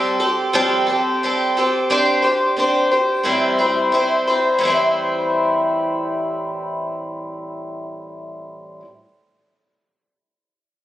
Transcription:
0.00 0.20 G3 medium
0.00 0.21 C4 medium
0.00 0.21 G4 medium
0.00 0.19 A4 medium
0.20 0.54 C4 soft
0.20 0.54 G4 soft
0.20 0.54 A4 medium
0.53 0.88 F3 medium
0.53 0.88 G3 medium
0.53 0.88 C4 medium
0.53 0.87 G4 loud
0.53 0.85 A4 medium
0.87 1.23 C4 soft
0.87 1.22 G4 soft
0.87 1.22 A4 medium
1.23 1.57 G3 medium
1.23 1.57 C4 medium
1.23 1.57 G4 medium
1.23 1.56 A4 medium
1.57 1.89 C4 soft
1.57 1.90 G4 soft
1.57 1.91 A4 medium
1.90 2.24 C4 medium
1.90 2.24 D4 medium
1.90 2.23 G4 medium
1.90 2.21 C5 medium
2.22 2.57 D4 soft
2.22 2.58 G4 medium
2.22 2.57 C5 medium
2.57 2.91 C4 medium
2.57 2.92 D4 medium
2.57 2.91 G4 medium
2.57 2.90 C5 medium
2.91 3.25 D4 soft
2.91 3.25 G4 soft
2.91 3.25 C5 soft
3.23 3.59 A2 medium
3.23 3.59 E3 medium
3.23 3.59 G3 medium
3.23 3.59 C4 medium
3.23 3.58 E4 medium
3.23 3.57 C5 medium
3.59 3.91 G3 soft
3.59 3.92 C4 soft
3.59 3.93 E4 soft
3.59 3.93 C5 medium
3.92 4.27 G3 medium
3.92 4.28 C4 medium
3.92 4.27 E4 medium
3.92 4.26 C5 medium
4.27 4.62 G3 soft
4.27 4.63 C4 medium
4.27 4.62 E4 soft
4.27 4.61 C5 medium
4.59 8.80 A2 medium
4.59 8.82 E3 medium
4.63 8.84 G3 medium
4.63 8.85 C4 medium
4.63 8.86 E4 medium
4.70 8.87 C5 medium

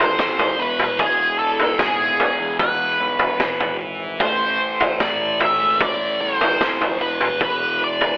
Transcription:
0.00 0.15 E2 medium
0.00 0.56 A2 medium
0.00 0.61 E3 medium
0.00 0.57 A3 medium
0.00 0.62 C5 medium
0.19 kick loud
0.19 snare medium
0.38 0.57 G#1 loud
0.38 floor tom medium
0.38 high conga medium
0.57 1.75 E1 loud
0.57 3.37 E2 medium
0.57 3.38 B2 medium
0.57 3.42 E3 medium
0.57 1.00 B4 medium
0.79 mid tom medium
0.79 high conga medium
0.99 1.37 G#4 medium
0.99 kick loud
0.99 floor tom medium
1.39 1.79 A4 medium
1.59 floor tom medium
1.79 2.16 G#1 medium
1.79 2.59 G#4 medium
1.79 kick loud
1.79 snare medium
1.79 mid tom medium
2.20 floor tom medium
2.20 high conga medium
2.20 low conga medium
2.40 2.96 E2 medium
2.59 3.76 B4 medium
2.59 kick loud
2.59 floor tom medium
3.00 3.56 B1 medium
3.00 high conga medium
3.19 floor tom medium
3.39 3.77 E2 medium
3.39 3.78 B2 medium
3.39 4.21 E3 medium
3.39 kick loud
3.39 snare medium
3.39 mid tom medium
3.60 4.20 G#1 loud
3.60 floor tom medium
3.81 low conga medium
4.00 high conga medium
4.20 4.57 A1 medium
4.20 6.98 A2 medium
4.20 7.02 E3 medium
4.20 7.00 A3 medium
4.20 5.03 C5 medium
4.20 kick loud
4.20 floor tom medium
4.80 floor tom medium
5.00 5.57 A2 medium
5.00 5.41 D5 medium
5.00 kick loud
5.00 snare medium
5.00 mid tom medium
5.40 5.82 E5 medium
5.40 floor tom medium
5.40 mid tom medium
5.40 high conga medium
5.40 low conga medium
5.61 5.98 G#1 medium
5.81 6.23 D5 medium
5.81 kick loud
5.81 floor tom medium
6.20 6.57 E2 loud
6.20 7.01 C5 medium
6.20 high conga medium
6.41 floor tom medium
6.61 kick loud
6.61 snare medium
6.80 6.99 F1 loud
6.80 floor tom medium
6.80 high conga medium
6.99 8.17 E1 loud
6.99 8.17 E2 medium
6.99 8.17 B2 medium
6.99 8.17 E3 medium
6.99 7.39 B4 medium
6.99 low conga medium
7.21 mid tom medium
7.21 high conga medium
7.41 7.83 B4 medium
7.41 kick medium
7.41 floor tom medium
7.81 8.17 D5 medium
7.81 low conga medium
8.01 floor tom medium

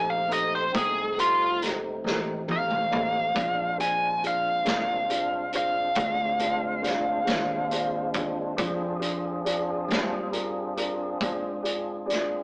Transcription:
0.00 0.70 A#1 medium
0.00 3.32 F3 medium
0.00 3.31 A3 medium
0.00 3.31 C4 medium
0.00 0.20 D#4 soft
0.00 3.31 D#4 medium
0.00 0.20 G4 soft
0.00 0.20 A4 soft
0.00 0.20 C5 medium
0.10 0.30 F5 medium
0.29 0.62 D#4 medium
0.29 0.63 G4 soft
0.29 0.62 A4 soft
0.29 0.62 C5 medium
0.29 closed hi-hat medium
0.33 0.53 D#5 medium
0.55 0.75 C5 medium
0.72 2.01 C2 medium
0.72 1.06 A3 soft
0.72 1.06 D#4 medium
0.72 1.06 C5 soft
0.72 1.06 G5 soft
0.72 kick loud
0.72 closed hi-hat medium
0.76 1.17 G#4 medium
1.17 1.50 D#4 soft
1.17 1.61 F4 medium
1.17 1.50 G4 soft
1.17 1.50 A4 soft
1.17 1.50 C5 medium
1.17 closed hi-hat medium
1.61 1.94 D#4 soft
1.61 1.94 G4 soft
1.61 1.94 A4 soft
1.61 1.94 C5 soft
1.61 snare soft
1.61 closed hi-hat medium
2.04 3.31 A1 medium
2.04 2.38 D#4 medium
2.04 2.37 G4 medium
2.04 2.38 A4 medium
2.04 2.38 C5 medium
2.04 snare medium
2.47 2.80 D#4 soft
2.47 2.81 G4 soft
2.47 2.81 A4 soft
2.47 2.81 C5 medium
2.47 high tom medium
2.51 3.77 F5 medium
2.70 mid tom medium
2.91 3.24 D#4 soft
2.91 3.24 G4 soft
2.91 3.24 A4 soft
2.91 3.24 D#5 medium
2.91 mid tom medium
3.34 4.63 A#1 medium
3.34 8.56 G#3 medium
3.34 8.55 C4 medium
3.34 3.67 D4 medium
3.34 8.56 D4 medium
3.34 3.67 F4 medium
3.34 8.56 F4 medium
3.34 3.67 G#4 medium
3.34 3.67 C5 medium
3.34 kick medium
3.34 closed hi-hat medium
3.78 4.11 D4 soft
3.78 4.11 F4 soft
3.78 4.11 G#4 soft
3.78 4.11 C5 medium
3.78 4.22 G#5 medium
3.78 closed hi-hat medium
4.22 4.55 D4 soft
4.22 4.55 F4 soft
4.22 4.56 G#4 soft
4.22 4.55 C5 soft
4.22 closed hi-hat soft
4.27 5.52 F5 medium
4.64 5.93 C2 medium
4.64 4.98 D4 soft
4.64 4.98 F4 soft
4.64 4.98 G#4 soft
4.64 4.98 A#4 medium
4.64 snare loud
4.64 closed hi-hat medium
5.10 5.42 D4 soft
5.10 5.42 F4 soft
5.10 5.42 G#4 soft
5.10 5.43 C5 medium
5.10 closed hi-hat medium
5.53 5.86 D4 soft
5.53 5.86 F4 soft
5.53 5.86 G#4 soft
5.53 5.86 C5 medium
5.53 closed hi-hat medium
5.57 8.13 F5 medium
5.95 7.24 D2 medium
5.95 6.30 D4 medium
5.95 6.30 F4 soft
5.95 6.30 G#4 soft
5.95 6.30 C5 medium
5.95 kick loud
5.95 closed hi-hat medium
6.39 6.73 D4 soft
6.39 6.73 F4 soft
6.39 6.73 G#4 soft
6.39 6.73 C5 medium
6.39 closed hi-hat medium
6.82 7.16 D4 medium
6.82 7.16 F4 soft
6.82 7.16 G#4 soft
6.82 7.16 C5 medium
6.82 snare soft
6.82 closed hi-hat medium
7.24 8.54 D#2 medium
7.24 7.59 D4 medium
7.24 7.59 F4 soft
7.24 7.59 G#4 medium
7.24 7.59 C5 medium
7.24 closed hi-hat medium
7.28 snare medium
7.71 8.04 D4 medium
7.71 8.04 F4 medium
7.71 8.05 G#4 medium
7.71 8.05 C5 medium
7.71 closed hi-hat medium
8.14 8.48 D4 medium
8.14 8.47 F4 medium
8.14 8.48 G#4 medium
8.14 8.48 C5 medium
8.14 kick medium
8.14 closed hi-hat medium
8.57 9.86 F2 medium
8.57 12.43 C4 medium
8.57 8.91 D4 medium
8.57 12.43 D4 medium
8.57 8.91 F4 medium
8.57 12.43 F4 medium
8.57 12.43 G#4 medium
8.57 8.91 G#4 medium
8.57 8.91 C5 medium
8.57 kick loud
8.57 closed hi-hat medium
8.99 9.34 D4 medium
8.99 9.34 F4 medium
8.99 9.34 G#4 medium
8.99 9.34 C5 medium
8.99 closed hi-hat medium
9.45 9.78 D4 medium
9.45 9.79 F4 medium
9.45 9.79 G#4 medium
9.45 9.79 D5 medium
9.45 closed hi-hat medium
9.88 11.17 G2 medium
9.88 10.23 D4 medium
9.88 10.23 F4 medium
9.88 10.23 G#4 medium
9.88 10.23 C5 medium
9.88 snare loud
9.88 closed hi-hat medium
10.31 10.65 D4 medium
10.31 10.66 F4 medium
10.31 10.66 G#4 medium
10.31 10.66 A#4 medium
10.31 closed hi-hat medium
10.76 11.10 D4 medium
10.76 11.10 F4 medium
10.76 11.10 G#4 medium
10.76 11.11 A#4 medium
10.76 closed hi-hat medium
11.20 12.43 G#2 medium
11.20 11.54 D4 medium
11.20 11.54 F4 medium
11.20 11.54 G#4 medium
11.20 11.54 C5 medium
11.20 kick medium
11.20 closed hi-hat medium
11.63 11.97 D4 medium
11.63 11.97 F4 medium
11.63 11.97 G#4 medium
11.63 11.97 D5 medium
11.63 closed hi-hat medium
12.06 12.41 D4 medium
12.06 12.41 F4 medium
12.06 12.40 G#4 medium
12.06 12.41 D5 medium
12.10 snare soft
12.10 closed hi-hat medium

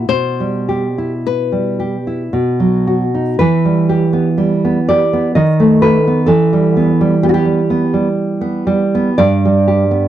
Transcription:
0.09 2.29 B2 soft
0.09 1.20 C5 medium
0.40 0.85 G3 soft
0.69 1.13 G4 soft
0.98 1.85 E4 soft
1.27 2.85 B4 medium
1.52 1.95 G3 soft
1.80 2.22 G4 soft
2.07 2.33 E4 soft
2.33 3.37 B2 medium
2.60 3.04 F#3 soft
2.87 3.30 F#4 soft
3.15 3.40 D#4 soft
3.39 5.32 E3 medium
3.39 4.83 B4 medium
3.65 4.04 G3 soft
3.89 4.29 G4 medium
4.13 4.53 B3 medium
4.38 4.77 G3 medium
4.65 5.03 B3 medium
4.89 5.27 G4 medium
4.89 5.34 D5 medium
5.13 5.36 B3 soft
5.35 6.26 D#3 medium
5.35 5.80 D#5 medium
5.60 5.96 A3 medium
5.82 6.19 A4 medium
5.82 6.26 B4 medium
6.07 6.29 B3 medium
6.26 9.15 E3 medium
6.26 7.18 A4 medium
6.53 6.90 G3 medium
6.77 7.14 B3 medium
7.01 7.37 G3 medium
7.23 7.61 B3 medium
7.23 7.29 G4 medium
7.29 7.33 F#4 medium
7.34 9.14 G4 medium
7.45 7.83 G3 medium
7.70 8.07 B3 medium
7.94 8.66 G3 medium
8.41 8.83 B3 medium
8.67 9.09 G3 medium
8.95 9.20 B3 medium
9.18 10.08 G2 medium
9.18 10.08 D5 loud
9.45 9.83 G3 medium
9.68 10.06 G4 medium
9.91 10.08 B3 medium

